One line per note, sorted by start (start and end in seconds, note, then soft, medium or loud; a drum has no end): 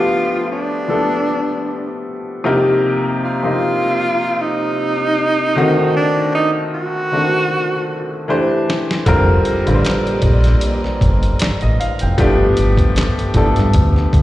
0.00 0.63 F3 medium
0.00 0.64 A3 medium
0.00 0.64 B3 medium
0.00 0.64 D4 medium
0.00 0.50 F4 loud
0.00 0.68 G4 loud
0.52 2.02 D4 medium
0.88 2.10 F3 medium
0.88 2.10 A3 medium
0.88 2.10 B3 medium
0.88 2.11 D4 medium
0.88 2.11 A4 medium
2.44 3.22 C3 loud
2.44 3.22 F3 medium
2.44 3.22 A#3 medium
2.44 3.23 D#4 medium
2.44 3.23 G4 loud
3.24 4.43 F4 loud
3.43 4.64 C3 medium
3.43 4.64 F3 medium
3.43 4.65 A#3 medium
3.43 4.65 D#4 medium
3.43 4.65 F4 medium
4.41 5.96 D#4 loud
5.56 6.82 D3 medium
5.56 6.81 D#3 loud
5.56 6.81 A3 medium
5.56 6.81 C4 medium
5.56 6.82 F#4 loud
5.96 6.32 D4 loud
6.35 6.51 D#4 loud
6.74 8.25 F#4 loud
7.12 8.28 D#3 medium
7.12 8.27 A3 medium
7.12 8.29 C4 medium
7.12 8.27 D4 medium
7.12 8.29 F#4 medium
8.28 8.92 E3 loud
8.28 8.92 A3 medium
8.28 8.92 D4 medium
8.28 8.93 G4 medium
8.28 8.93 C5 loud
8.70 snare loud
8.91 snare medium
9.05 9.37 F1 loud
9.05 9.52 D3 loud
9.05 9.52 G3 loud
9.05 12.14 A#3 medium
9.05 9.53 C4 loud
9.05 9.53 F4 loud
9.05 12.14 G4 medium
9.05 9.53 A#4 loud
9.05 12.14 D5 medium
9.05 12.14 D#5 medium
9.05 kick loud
9.05 closed hi-hat medium
9.45 closed hi-hat medium
9.66 9.81 A1 medium
9.66 10.87 D3 medium
9.66 10.88 G3 medium
9.66 10.88 C4 medium
9.66 10.88 F4 medium
9.66 9.72 B4 medium
9.66 closed hi-hat soft
9.75 10.92 C5 loud
9.85 snare loud
9.85 clap medium
9.85 closed hi-hat medium
10.07 closed hi-hat soft
10.22 10.54 A#1 loud
10.22 kick medium
10.22 closed hi-hat medium
10.44 snare soft
10.44 closed hi-hat medium
10.61 closed hi-hat medium
10.84 snare soft
11.01 11.32 G1 medium
11.01 kick loud
11.01 closed hi-hat medium
11.23 closed hi-hat soft
11.39 11.60 D5 medium
11.39 muted fingered electric bass stroke soft
11.39 snare loud
11.39 clap medium
11.39 closed hi-hat medium
11.61 11.76 A1 medium
11.61 11.78 D#5 medium
11.61 closed hi-hat soft
11.80 12.00 F5 medium
11.80 closed hi-hat medium
11.99 12.15 F1 loud
11.99 12.38 G5 medium
11.99 closed hi-hat medium
12.18 12.49 G1 loud
12.18 13.10 F3 loud
12.18 13.10 A3 loud
12.18 13.11 B3 loud
12.18 13.11 D4 loud
12.18 13.11 G4 loud
12.18 kick loud
12.18 closed hi-hat medium
12.57 13.05 G1 medium
12.57 closed hi-hat medium
12.78 kick loud
12.78 closed hi-hat soft
12.96 snare loud
12.96 clap loud
12.96 closed hi-hat medium
13.19 closed hi-hat soft
13.34 13.52 G1 loud
13.34 14.22 F3 medium
13.34 14.22 A3 medium
13.34 14.22 B3 medium
13.34 14.22 D4 medium
13.34 14.22 A4 loud
13.34 kick medium
13.34 closed hi-hat medium
13.56 13.71 G2 loud
13.56 snare soft
13.56 closed hi-hat soft
13.74 14.05 D2 loud
13.74 kick loud
13.74 closed hi-hat medium
13.96 snare soft
14.13 14.22 D2 medium
14.13 kick loud
14.13 closed hi-hat medium